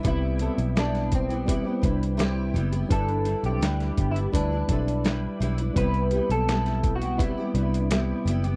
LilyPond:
<<
  \new Staff \with { instrumentName = "Clean electric guitar" } { \time 4/4 \key c \lydian \tempo 4 = 84 r8 <c' a'>16 r4. r16 <d' b'>8 r4 | <d' b'>8 r16 <c' a'>16 r8 <b g'>8 <d' b'>8 <c' a'>16 r4 r16 | r8 <b g'>16 r4. r16 <d' b'>8 r4 | }
  \new Staff \with { instrumentName = "Clean electric guitar" } { \time 4/4 \key c \lydian e'4 d'8 c'2 r8 | a'8. g'16~ \tuplet 3/2 { g'4 e'8 } d'4. r8 | b'8. a'16~ \tuplet 3/2 { a'4 fis'8 } e'4. r8 | }
  \new Staff \with { instrumentName = "Steel-string acoustic guitar" } { \time 4/4 \key c \lydian <c g b e' g'>8 <g b e' g'>8 <g b e' g'>8. <b e' g'>16 <g b e' g'>16 <b e' g'>16 <g e' g'>8 <c g e' g'>8 <g b e' g'>16 <b e' g'>16 | <g d' e' b'>8 <g d' e' b'>8 <g d' e' b'>8. <d' e' b'>16 <g d' e' b'>16 <d' e' b'>16 <g d' e' b'>8 <g d' e' b'>8 <g d' e' b'>16 <d' e' b'>16 | <c g b e' g'>8 <g b e' g'>8 <g b e' g'>8. <b e' g'>16 <g b e' g'>16 <b e' g'>16 <g b e' g'>8 <c g b e' g'>8 <g b e' g'>16 <b e' g'>16 | }
  \new Staff \with { instrumentName = "Tine electric piano" } { \time 4/4 \key c \lydian <g c' e' b'>4. r8 <g c' e' b'>4. r8 | <g d' e' b'>4. r8 <g d' e' b'>4. r8 | <g c' e' b'>4. r8 <g c' e' b'>4. r8 | }
  \new Staff \with { instrumentName = "Picked electric bass" } { \clef bass \time 4/4 \key c \lydian c,8. b,,4. r16 c,4 fis,,8 | g,,8. b,,16 d,8 g,,8 d,8 b,,4 b,,8 | c,8. b,,4. r16 c,4 fis,,8 | }
  \new DrumStaff \with { instrumentName = "Drums" } \drummode { \time 4/4 <hh bd>8 hh16 hh16 <hh sn>16 <hh sn>16 <hh bd>16 hh16 <hh bd>8 <hh bd>16 hh16 <hh sn>8 hh16 hh16 | <hh bd>16 hh16 hh16 hh16 <hh sn>16 <hh sn>16 <hh bd>16 hh16 <hh bd>8 <hh bd>16 hh16 <hh sn>8 hh16 hh16 | <hh bd>16 hh16 hh16 hh16 <hh sn>16 <hh sn>16 <hh bd>16 hh16 <hh bd>8 hh16 hh16 <hh sn>8 hh16 hh16 | }
>>